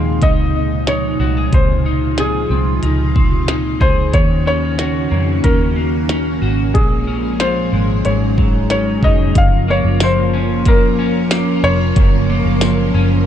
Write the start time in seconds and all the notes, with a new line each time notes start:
Already playing: D#2 A#2 C3 F3 G#3 C4 D#4 G#4 F5
0.22 C#2 D#4 D#5, kick, closed hi-hat
0.87 D#4 C#5, snare, closed hi-hat
1.20 C2 F#4
1.37 G#4
1.53 C#2 F4 C5, kick, closed hi-hat
1.86 D#4
2.18 G#4, snare, closed hi-hat
2.50 C2 C4
2.83 C#2 D#4, closed hi-hat
3.16 C4, kick
3.48 D#4, snare, closed hi-hat
3.80 C#2 G#4 C5, kick
4.13 D#2 C#3 D#3 A#3 C#4 F#4 C#5, kick, closed hi-hat
4.46 C#4 C#5
4.78 F#4, snare, closed hi-hat
5.11 F2 A#3
5.44 D#2 C#4 A#4, kick, closed hi-hat
5.76 A#3
6.09 C#4, snare, closed hi-hat
6.42 G#1 F#4
6.74 A#1 A#2 F3 G#3 G#4, kick, closed hi-hat
7.07 C#4
7.40 F4 C5, snare, closed hi-hat
7.72 G#1 G#3
8.05 G#1 G#2 F#3 D#4 C#5, closed hi-hat
8.38 F#3, kick
8.70 C#4 C#5, snare, closed hi-hat
9.02 F1 D#4 D#5, kick
9.35 F#1 F3 A#3 C#4 F4 A#4 F5, kick, closed hi-hat
9.68 A#3 C#5
9.84 F#1
10.00 F3 C5, snare, closed hi-hat, tambourine
10.34 C#4
10.66 A#3 A#4, kick, closed hi-hat
10.99 C#4
11.31 A#3, snare, closed hi-hat, tambourine
11.64 F1 F3 C#5
11.96 F#1 F#2, kick, closed hi-hat
12.30 A#3
12.45 F#1
12.61 F3, snare, closed hi-hat, tambourine
12.94 F#1 C#4